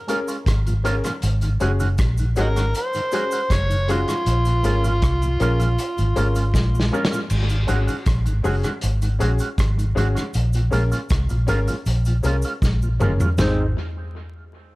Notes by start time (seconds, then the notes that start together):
0.07 G#3 A#3 C#4 F4 G#4 A#4, closed hi-hat, cabasa
0.28 G#3 C#4 F4, closed hi-hat, cabasa
0.46 G#1, kick, cross-stick, closed hi-hat, cabasa
0.67 A#2 F3, closed hi-hat, cabasa
0.84 G#3 A#3 C#4 F4 G#4 A#4, closed hi-hat, cabasa
1.04 A#2 F3 G#3 C#4 F4, cross-stick, closed hi-hat, cabasa
1.22 G#1, closed hi-hat, cabasa
1.41 G#2 D#3, closed hi-hat, cabasa
1.60 F#1 F#3 G#3 C#4 F#4 G#4, closed hi-hat, cabasa
1.80 G#2 D#3 G#3 C#4 F#4, closed hi-hat, cabasa
1.98 A#1, kick, cross-stick, closed hi-hat, cabasa
2.18 G#2 D#3, closed hi-hat, cabasa
2.36 G#1 F#3 G#3 C#4 F#4 G#4, closed hi-hat, cabasa
2.40 D#4 F#4 A#4
2.56 G#2 D#3 G#3 C#4 F#4, cross-stick, closed hi-hat, cabasa
2.75 C5, closed hi-hat, cabasa
2.93 G#2 D#3, closed hi-hat, cabasa
3.12 F#3 G#3 C#4 F#4 G#4, closed hi-hat, cabasa
3.31 G#3 C#4 F#4, closed hi-hat, cabasa
3.50 F#1 C#5, kick, cross-stick, closed hi-hat, cabasa
3.70 G#2 D#3, closed hi-hat, cabasa
3.88 F#3 G#3 C#4 F4 F#4 G#4, closed hi-hat, cabasa
4.08 G#2 D#3 G#3 C#4 F#4, cross-stick, closed hi-hat, cabasa
4.26 A#1, closed hi-hat, cabasa
4.45 A#2 F3, closed hi-hat, cabasa
4.63 G#1 G#3 A#3 C#4 F4 G#4 A#4, closed hi-hat, cabasa
4.84 A#2 F3 G#3 C#4 F4, closed hi-hat, cabasa
5.02 C2, kick, cross-stick, closed hi-hat, cabasa
5.22 A#2 F3, closed hi-hat, cabasa
5.40 A#1 G#3 A#3 C#4 F4 G#4 A#4, closed hi-hat, cabasa
5.59 A#2 F3 G#3 C#4 F4, closed hi-hat, cabasa
5.78 closed hi-hat, cabasa
5.98 G#1 A#2 F3, closed hi-hat, cabasa
6.16 G#1 G#3 A#3 C#4 F4 G#4 A#4, closed hi-hat, cabasa
6.35 G#3 C#4 F4, closed hi-hat, cabasa
6.54 A#1, kick, snare, cabasa
6.75 A#2 F3, cabasa
6.80 snare
6.92 G#3 A#3 C#4 F4 G#4 A#4, cabasa
7.05 snare
7.11 A#2 F3 G#3 C#4 F4, cabasa
7.30 G#1, crash, cabasa
7.49 G#2 D#3, closed hi-hat, cabasa
7.67 G#1 F#3 G#3 C#4 F#4 G#4, closed hi-hat, cabasa
7.87 G#2 D#3 G#3 C#4 F#4, closed hi-hat, cabasa
8.06 A#1, kick, cross-stick, closed hi-hat, cabasa
8.26 G#1 G#2 D#3, closed hi-hat, cabasa
8.43 F#1 F#3 G#3 C#4 F#4 G#4, open hi-hat, cabasa
8.64 G#2 D#3 G#3 C#4 F#4, cross-stick, closed hi-hat, cabasa
8.81 G#1, closed hi-hat, cabasa
9.02 G#2 D#3, closed hi-hat, cabasa
9.19 A#1 F#3 G#3 C#4 F#4 G#4, closed hi-hat, cabasa
9.39 G#3 C#4 F#4, closed hi-hat, cabasa
9.58 G#1, kick, cross-stick, closed hi-hat, cabasa
9.78 G#2 D#3, closed hi-hat, cabasa
9.95 G#1 F#3 G#3 C#4 F#4 G#4, closed hi-hat, cabasa
10.15 G#2 D#3 G#3 C#4 F#4, cross-stick, closed hi-hat, cabasa
10.34 A#1, closed hi-hat, cabasa
10.53 A#2 F3, closed hi-hat, cabasa
10.71 A#1 G#3 A#3 C#4 F4 G#4 A#4, closed hi-hat, cabasa
10.92 A#2 F3 G#3 C#4 F4, closed hi-hat, cabasa
11.09 C2, kick, cross-stick, closed hi-hat, cabasa
11.29 A#1 A#2 F3, closed hi-hat, cabasa
11.47 G#1 G#3 A#3 C#4 F4 G#4 A#4, closed hi-hat, cabasa
11.68 A#2 F3 G#3 C#4 F4, closed hi-hat, cabasa
11.86 A#1, closed hi-hat, cabasa
12.05 A#2 F3, closed hi-hat, cabasa
12.23 C2 G#3 A#3 C#4 F4 G#4 A#4, closed hi-hat, cabasa
12.42 C#4 F4, closed hi-hat, cabasa
12.46 G#3
12.62 A#1, kick, snare, cabasa
12.82 A#2 F3, cabasa
13.00 F#1 G#3 A#3 C#4 F4 G#4 A#4, mid tom, cabasa
13.20 A#2 F3 G#3 C#4 F4, floor tom, cabasa
13.38 G#1 G#3 C4 D#4 G#4 C5, snare, floor tom, ride bell, cabasa